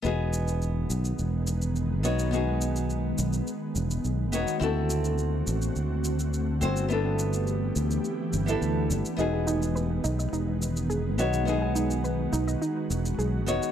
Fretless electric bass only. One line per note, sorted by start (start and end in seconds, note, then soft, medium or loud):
0.05 0.85 E1 medium
0.90 1.12 B1 medium
1.19 2.05 E1 medium
2.05 3.13 B1 medium
3.19 3.40 B1 medium
3.76 3.97 E1 medium
4.05 4.33 B1 medium
4.33 4.44 E1 medium
4.61 5.42 D2 medium
5.47 5.69 A1 medium
5.76 6.63 D2 medium
6.62 7.70 G1 medium
7.76 7.98 D2 medium
8.33 8.55 G1 medium
8.61 8.92 D2 medium
8.90 9.01 G1 medium
9.19 9.99 E1 medium
10.05 10.26 B1 medium
10.33 11.19 E1 medium
11.19 12.27 B1 medium
12.33 12.55 B1 medium
12.90 13.12 E1 medium
13.18 13.47 B1 medium
13.47 13.58 E1 medium